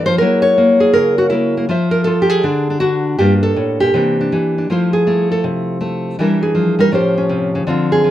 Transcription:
0.00 0.20 G2 medium
0.00 0.19 D4 soft
0.06 0.20 F3 medium
0.06 0.18 C5 loud
0.18 1.68 F#3 medium
0.18 0.57 A#3 soft
0.18 1.29 E4 soft
0.18 0.42 A#4 loud
0.22 0.79 G#4 soft
0.42 0.93 C#5 loud
0.58 1.31 A#3 medium
0.80 1.18 G#4 medium
0.93 1.68 C#3 medium
0.93 1.55 A#4 loud
1.18 1.26 F#4 medium
1.30 1.56 A#3 medium
1.30 1.68 E4 medium
1.57 1.68 A#3 soft
1.69 2.43 F3 medium
1.69 2.06 F4 soft
1.69 1.91 C5 medium
1.69 2.21 E5 soft
1.91 2.04 A#4 medium
2.04 2.29 F4 medium
2.04 2.42 A4 medium
2.22 2.43 G4 medium
2.29 2.80 G#4 medium
2.43 3.16 D3 medium
2.43 2.68 D4 soft
2.70 2.80 D4 soft
2.80 3.17 D4 medium
2.80 3.18 F#4 loud
3.19 3.56 G2 medium
3.19 3.92 A#3 medium
3.19 3.92 D4 soft
3.19 3.42 F4 soft
3.19 3.33 G4 medium
3.43 3.93 A4 loud
3.56 3.80 A2 medium
3.80 3.93 A#2 medium
3.80 4.67 G4 medium
3.94 4.30 C3 medium
3.94 4.31 E3 soft
3.94 4.69 A#3 medium
3.94 4.19 D4 soft
4.21 4.56 D4 soft
4.32 4.67 E3 medium
4.58 4.69 D4 soft
4.70 6.16 F3 medium
4.70 5.06 A3 soft
4.70 5.06 E4 soft
4.70 4.93 F4 soft
4.70 6.18 C5 soft
4.93 5.30 G#4 medium
5.07 5.79 A3 medium
5.07 6.17 E4 soft
5.32 5.43 A4 medium
5.44 6.16 C3 medium
5.81 6.16 A3 medium
6.19 6.91 E3 medium
6.19 6.54 G3 soft
6.19 6.92 D4 soft
6.19 6.42 E4 soft
6.19 6.79 A#4 soft
6.43 6.79 G#4 medium
6.55 6.78 F3 medium
6.79 6.91 G3 medium
6.79 6.92 A#4 loud
6.92 7.65 A2 medium
6.92 7.66 F3 medium
6.92 7.17 C#4 medium
6.92 7.66 G4 medium
6.92 7.70 C5 medium
7.18 7.65 C#4 medium
7.29 7.54 C3 medium
7.55 7.66 C#3 medium
7.67 8.11 D3 medium
7.67 8.03 F3 soft
7.67 8.11 C4 soft
7.67 8.11 F4 soft
7.92 8.11 G#4 medium
8.04 8.11 F3 medium

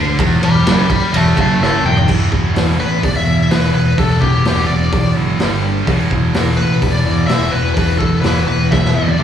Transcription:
0.00 0.17 D2 loud
0.00 0.17 D3 loud
0.17 0.41 E1 loud
0.17 0.41 E2 loud
0.17 kick loud
0.17 ride loud
0.42 0.64 E1 medium
0.42 0.61 E2 medium
0.42 0.67 D5 medium
0.42 0.66 B5 loud
0.42 ride medium
0.65 0.88 F#1 medium
0.65 0.88 F#2 loud
0.65 0.89 D5 medium
0.65 0.90 B5 medium
0.65 snare loud
0.65 ride loud
0.88 1.13 D5 medium
0.88 muted distorted electric guitar stroke medium
0.88 muted fingered electric bass stroke soft
0.88 kick medium
0.88 ride medium
0.93 1.14 B5 medium
1.12 1.35 E1 loud
1.12 1.35 E2 loud
1.12 ride loud
1.16 1.37 E5 medium
1.16 1.38 A5 medium
1.36 1.59 F#1 loud
1.36 1.58 F#2 loud
1.36 kick medium
1.36 ride medium
1.41 1.61 E5 medium
1.41 1.62 A5 loud
1.59 1.83 F#1 medium
1.59 1.83 F#2 loud
1.59 1.83 E5 medium
1.59 snare medium
1.63 1.85 A5 loud
1.84 2.06 E1 loud
1.84 2.06 E2 loud
1.84 2.08 G5 loud
1.84 mid tom medium
1.97 floor tom medium
2.07 2.28 E1 medium
2.07 2.30 E2 medium
2.07 2.30 B2 medium
2.07 2.30 E3 medium
2.07 kick loud
2.07 crash loud
2.31 2.52 E1 medium
2.31 2.52 E2 medium
2.31 2.52 B2 medium
2.31 kick medium
2.54 2.75 E1 medium
2.54 2.77 E2 medium
2.54 2.77 B2 medium
2.54 2.78 E3 medium
2.54 snare loud
2.54 open hi-hat medium
2.79 2.99 A1 medium
2.79 3.00 E2 medium
2.79 3.00 B2 medium
2.79 3.04 B4 medium
3.02 3.23 E1 medium
3.02 3.23 E2 medium
3.02 3.24 B2 medium
3.02 3.16 D5 medium
3.02 kick loud
3.02 open hi-hat medium
3.17 3.52 E5 medium
3.26 3.47 E2 medium
3.26 3.46 E2 medium
3.26 3.47 B2 medium
3.50 3.70 E1 medium
3.50 3.72 E2 medium
3.50 3.72 B2 medium
3.50 3.72 E3 medium
3.50 3.73 B4 medium
3.50 snare loud
3.50 open hi-hat medium
3.75 3.94 E1 medium
3.75 3.96 E2 medium
3.75 3.96 B2 medium
3.75 3.98 B4 medium
3.98 4.18 E1 medium
3.98 4.19 E2 medium
3.98 4.19 B2 medium
3.98 5.40 E3 medium
3.98 4.22 A4 medium
3.98 kick loud
3.98 open hi-hat soft
4.21 4.42 E1 medium
4.21 4.43 E2 medium
4.21 4.43 B2 medium
4.21 4.70 G4 medium
4.21 kick medium
4.45 4.65 E1 medium
4.45 4.67 E2 medium
4.45 4.68 B2 loud
4.45 4.68 E3 loud
4.45 snare loud
4.45 open hi-hat medium
4.67 4.89 E1 medium
4.67 4.90 E2 medium
4.67 4.90 B2 medium
4.67 5.12 D5 medium
4.92 5.12 E1 medium
4.92 5.13 E2 medium
4.92 5.14 B2 medium
4.92 kick loud
4.92 open hi-hat medium
5.16 5.36 F#1 medium
5.16 5.38 E2 medium
5.16 5.38 B2 medium
5.16 5.39 E3 medium
5.40 5.81 G1 medium
5.40 5.62 G2 medium
5.40 5.62 D3 medium
5.40 5.63 G3 loud
5.40 snare loud
5.40 open hi-hat medium
5.64 5.85 G2 medium
5.64 5.85 D3 medium
5.87 6.07 E1 medium
5.87 6.09 E2 medium
5.87 6.09 B2 medium
5.87 6.10 E3 loud
5.87 kick loud
5.87 open hi-hat medium
6.11 6.31 E1 medium
6.11 6.32 E2 medium
6.11 6.32 B2 medium
6.11 kick medium
6.34 6.54 E1 medium
6.34 6.56 E2 medium
6.34 6.57 B2 medium
6.34 6.57 E3 medium
6.34 snare loud
6.34 open hi-hat medium
6.57 6.78 A1 medium
6.57 6.79 E2 medium
6.57 6.80 B2 medium
6.57 6.91 B4 medium
6.82 7.02 E1 medium
6.82 7.03 E2 medium
6.82 7.03 B2 medium
6.82 kick loud
6.82 open hi-hat medium
6.91 7.26 D5 medium
7.05 7.27 E2 medium
7.05 7.26 E2 medium
7.05 7.27 B2 medium
7.27 7.50 E1 medium
7.27 7.51 E2 medium
7.27 7.52 B2 medium
7.27 7.52 E3 medium
7.27 7.53 E5 loud
7.27 snare loud
7.27 open hi-hat medium
7.51 7.73 E1 medium
7.51 7.75 E2 medium
7.51 7.75 B2 medium
7.51 7.73 B4 medium
7.74 7.97 E1 medium
7.74 7.98 E2 medium
7.74 7.98 B2 medium
7.74 7.98 B4 medium
7.74 kick loud
7.74 open hi-hat medium
7.79 9.19 E3 medium
7.98 8.21 E1 medium
7.98 8.22 E2 medium
7.98 8.22 B2 medium
7.98 8.21 A4 medium
7.98 kick medium
8.21 8.44 E1 medium
8.21 8.46 E2 medium
8.21 8.47 B2 medium
8.21 8.47 E3 medium
8.21 8.46 B4 medium
8.21 snare loud
8.21 open hi-hat medium
8.47 8.68 E1 medium
8.47 8.70 E2 medium
8.47 8.70 B2 medium
8.47 8.72 B4 medium
8.71 8.92 E1 medium
8.71 8.93 E2 medium
8.71 8.94 B2 medium
8.71 8.95 E5 medium
8.71 kick loud
8.71 snare medium
8.85 snare medium
8.94 9.17 E2 medium
8.94 9.16 E2 medium
8.94 9.18 B2 medium
8.94 9.18 E3 medium
8.94 9.23 D5 medium
9.08 high tom medium
9.18 9.23 D2 medium
9.18 9.23 D3 medium
9.18 9.23 A3 medium
9.18 9.23 D4 medium
9.18 mid tom medium

